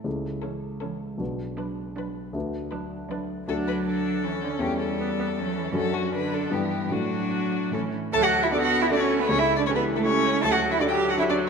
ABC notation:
X:1
M:3/4
L:1/16
Q:1/4=158
K:Bdor
V:1 name="Violin"
z4 A4 A4 | z4 B4 B4 | z4 B4 B4 | [K:D] A2 B2 A8 |
G2 A8- A2 | A2 F2 B2 A2 G4 | F8 A2 z2 | a f2 e d f2 e d c2 B |
c e2 d c B2 A c4 | a f2 e d g2 f e d2 z |]
V:2 name="Grand piano"
[C,,CEA]12 | [B,,,DFB]12 | [D,,DFB]12 | [K:D] [D,,DFA]12 |
[E,,CGA]12 | [F,,DFA]8 [G,,DEB]4 | [A,,DFA]8 [A,,CEA]4 | D,,4 [DFA]4 [DFA]4 |
C,,4 [EGA]4 [EGA]4 | D,,4 [DFA]4 [DFA]4 |]
V:3 name="Cello"
z4 E,4 E,4 | z4 F,4 F,4 | z4 F,4 F,4 | [K:D] F,8 E,2 D,2 |
G,8 F,2 E,2 | F,4 D,4 E,4 | F,8 E,2 z2 | A F2 E D F2 E D C2 B, |
C E2 D C B,2 A, C4 | A F2 E D G2 F E D2 z |]
V:4 name="Viola"
z4 C4 C4 | z4 D4 D4 | z4 D4 D4 | [K:D] D4 D4 C4- |
C4 B,2 B,2 C4- | C4 D4 B,4 | D8 C2 z2 | F,4 B,4 A,4- |
A,4 E,4 A,4 | F,4 F,8 |]